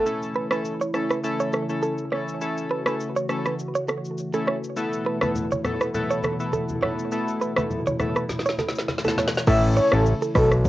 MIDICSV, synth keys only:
0, 0, Header, 1, 2, 480
1, 0, Start_track
1, 0, Key_signature, 3, "major"
1, 0, Tempo, 588235
1, 50, Time_signature, 4, 2, 24, 8
1, 8721, End_track
2, 0, Start_track
2, 0, Title_t, "Synth keys"
2, 0, Program_c, 0, 88
2, 47, Note_on_c, 0, 57, 82
2, 49, Note_on_c, 0, 61, 74
2, 51, Note_on_c, 0, 64, 73
2, 53, Note_on_c, 0, 69, 89
2, 389, Note_off_c, 0, 57, 0
2, 389, Note_off_c, 0, 61, 0
2, 391, Note_off_c, 0, 64, 0
2, 392, Note_off_c, 0, 69, 0
2, 420, Note_on_c, 0, 57, 68
2, 422, Note_on_c, 0, 61, 64
2, 423, Note_on_c, 0, 64, 63
2, 425, Note_on_c, 0, 69, 77
2, 595, Note_off_c, 0, 57, 0
2, 596, Note_off_c, 0, 61, 0
2, 596, Note_off_c, 0, 64, 0
2, 598, Note_off_c, 0, 69, 0
2, 768, Note_on_c, 0, 57, 69
2, 770, Note_on_c, 0, 61, 64
2, 771, Note_on_c, 0, 64, 64
2, 773, Note_on_c, 0, 69, 84
2, 955, Note_off_c, 0, 57, 0
2, 956, Note_off_c, 0, 61, 0
2, 957, Note_off_c, 0, 64, 0
2, 957, Note_off_c, 0, 69, 0
2, 1008, Note_on_c, 0, 57, 88
2, 1010, Note_on_c, 0, 61, 76
2, 1011, Note_on_c, 0, 64, 75
2, 1014, Note_on_c, 0, 69, 97
2, 1349, Note_off_c, 0, 57, 0
2, 1350, Note_off_c, 0, 61, 0
2, 1351, Note_off_c, 0, 64, 0
2, 1352, Note_off_c, 0, 69, 0
2, 1382, Note_on_c, 0, 57, 72
2, 1383, Note_on_c, 0, 61, 65
2, 1384, Note_on_c, 0, 64, 62
2, 1386, Note_on_c, 0, 69, 80
2, 1704, Note_off_c, 0, 57, 0
2, 1704, Note_off_c, 0, 61, 0
2, 1705, Note_off_c, 0, 64, 0
2, 1706, Note_off_c, 0, 69, 0
2, 1729, Note_on_c, 0, 57, 73
2, 1731, Note_on_c, 0, 61, 68
2, 1732, Note_on_c, 0, 64, 67
2, 1734, Note_on_c, 0, 69, 81
2, 1952, Note_off_c, 0, 57, 0
2, 1953, Note_off_c, 0, 61, 0
2, 1954, Note_off_c, 0, 64, 0
2, 1955, Note_off_c, 0, 69, 0
2, 1969, Note_on_c, 0, 57, 83
2, 1970, Note_on_c, 0, 61, 75
2, 1972, Note_on_c, 0, 64, 76
2, 1974, Note_on_c, 0, 69, 92
2, 2309, Note_off_c, 0, 57, 0
2, 2310, Note_off_c, 0, 61, 0
2, 2311, Note_off_c, 0, 64, 0
2, 2312, Note_off_c, 0, 69, 0
2, 2341, Note_on_c, 0, 57, 70
2, 2342, Note_on_c, 0, 61, 61
2, 2344, Note_on_c, 0, 64, 65
2, 2345, Note_on_c, 0, 69, 76
2, 2515, Note_off_c, 0, 57, 0
2, 2516, Note_off_c, 0, 61, 0
2, 2517, Note_off_c, 0, 64, 0
2, 2517, Note_off_c, 0, 69, 0
2, 2688, Note_on_c, 0, 57, 74
2, 2689, Note_on_c, 0, 61, 65
2, 2691, Note_on_c, 0, 64, 67
2, 2693, Note_on_c, 0, 69, 83
2, 2875, Note_off_c, 0, 57, 0
2, 2876, Note_off_c, 0, 61, 0
2, 2876, Note_off_c, 0, 64, 0
2, 2877, Note_off_c, 0, 69, 0
2, 3539, Note_on_c, 0, 57, 72
2, 3540, Note_on_c, 0, 61, 69
2, 3542, Note_on_c, 0, 64, 69
2, 3544, Note_on_c, 0, 69, 80
2, 3714, Note_off_c, 0, 57, 0
2, 3715, Note_off_c, 0, 61, 0
2, 3716, Note_off_c, 0, 64, 0
2, 3717, Note_off_c, 0, 69, 0
2, 3886, Note_on_c, 0, 57, 87
2, 3888, Note_on_c, 0, 59, 80
2, 3890, Note_on_c, 0, 64, 77
2, 3892, Note_on_c, 0, 69, 96
2, 4228, Note_off_c, 0, 57, 0
2, 4229, Note_off_c, 0, 59, 0
2, 4230, Note_off_c, 0, 64, 0
2, 4231, Note_off_c, 0, 69, 0
2, 4259, Note_on_c, 0, 57, 69
2, 4262, Note_on_c, 0, 59, 66
2, 4263, Note_on_c, 0, 64, 65
2, 4264, Note_on_c, 0, 69, 78
2, 4435, Note_off_c, 0, 57, 0
2, 4436, Note_off_c, 0, 59, 0
2, 4436, Note_off_c, 0, 64, 0
2, 4437, Note_off_c, 0, 69, 0
2, 4609, Note_on_c, 0, 57, 71
2, 4610, Note_on_c, 0, 59, 69
2, 4612, Note_on_c, 0, 64, 68
2, 4614, Note_on_c, 0, 69, 85
2, 4795, Note_off_c, 0, 57, 0
2, 4796, Note_off_c, 0, 59, 0
2, 4797, Note_off_c, 0, 64, 0
2, 4798, Note_off_c, 0, 69, 0
2, 4849, Note_on_c, 0, 57, 90
2, 4852, Note_on_c, 0, 59, 81
2, 4853, Note_on_c, 0, 64, 80
2, 4855, Note_on_c, 0, 69, 96
2, 5190, Note_off_c, 0, 57, 0
2, 5191, Note_off_c, 0, 59, 0
2, 5192, Note_off_c, 0, 64, 0
2, 5192, Note_off_c, 0, 69, 0
2, 5220, Note_on_c, 0, 57, 75
2, 5221, Note_on_c, 0, 59, 64
2, 5223, Note_on_c, 0, 64, 68
2, 5224, Note_on_c, 0, 69, 78
2, 5543, Note_off_c, 0, 57, 0
2, 5543, Note_off_c, 0, 59, 0
2, 5544, Note_off_c, 0, 64, 0
2, 5545, Note_off_c, 0, 69, 0
2, 5567, Note_on_c, 0, 57, 73
2, 5569, Note_on_c, 0, 59, 69
2, 5570, Note_on_c, 0, 64, 71
2, 5572, Note_on_c, 0, 69, 83
2, 5791, Note_off_c, 0, 57, 0
2, 5792, Note_off_c, 0, 59, 0
2, 5793, Note_off_c, 0, 64, 0
2, 5794, Note_off_c, 0, 69, 0
2, 5807, Note_on_c, 0, 57, 83
2, 5809, Note_on_c, 0, 59, 79
2, 5811, Note_on_c, 0, 64, 79
2, 5813, Note_on_c, 0, 69, 93
2, 6149, Note_off_c, 0, 57, 0
2, 6150, Note_off_c, 0, 59, 0
2, 6151, Note_off_c, 0, 64, 0
2, 6152, Note_off_c, 0, 69, 0
2, 6179, Note_on_c, 0, 57, 71
2, 6180, Note_on_c, 0, 59, 65
2, 6182, Note_on_c, 0, 64, 63
2, 6184, Note_on_c, 0, 69, 79
2, 6355, Note_off_c, 0, 57, 0
2, 6355, Note_off_c, 0, 59, 0
2, 6356, Note_off_c, 0, 64, 0
2, 6357, Note_off_c, 0, 69, 0
2, 6527, Note_on_c, 0, 57, 73
2, 6529, Note_on_c, 0, 59, 68
2, 6530, Note_on_c, 0, 64, 69
2, 6533, Note_on_c, 0, 69, 80
2, 6714, Note_off_c, 0, 57, 0
2, 6715, Note_off_c, 0, 59, 0
2, 6716, Note_off_c, 0, 64, 0
2, 6717, Note_off_c, 0, 69, 0
2, 7381, Note_on_c, 0, 57, 75
2, 7383, Note_on_c, 0, 59, 67
2, 7384, Note_on_c, 0, 64, 68
2, 7385, Note_on_c, 0, 69, 85
2, 7555, Note_off_c, 0, 57, 0
2, 7556, Note_off_c, 0, 59, 0
2, 7557, Note_off_c, 0, 64, 0
2, 7557, Note_off_c, 0, 69, 0
2, 7730, Note_on_c, 0, 57, 92
2, 7731, Note_on_c, 0, 61, 85
2, 7733, Note_on_c, 0, 64, 84
2, 7733, Note_on_c, 0, 69, 96
2, 8070, Note_off_c, 0, 57, 0
2, 8070, Note_off_c, 0, 61, 0
2, 8071, Note_off_c, 0, 64, 0
2, 8072, Note_off_c, 0, 69, 0
2, 8102, Note_on_c, 0, 57, 75
2, 8103, Note_on_c, 0, 61, 70
2, 8105, Note_on_c, 0, 64, 70
2, 8107, Note_on_c, 0, 69, 87
2, 8276, Note_off_c, 0, 57, 0
2, 8277, Note_off_c, 0, 61, 0
2, 8278, Note_off_c, 0, 64, 0
2, 8278, Note_off_c, 0, 69, 0
2, 8721, End_track
0, 0, End_of_file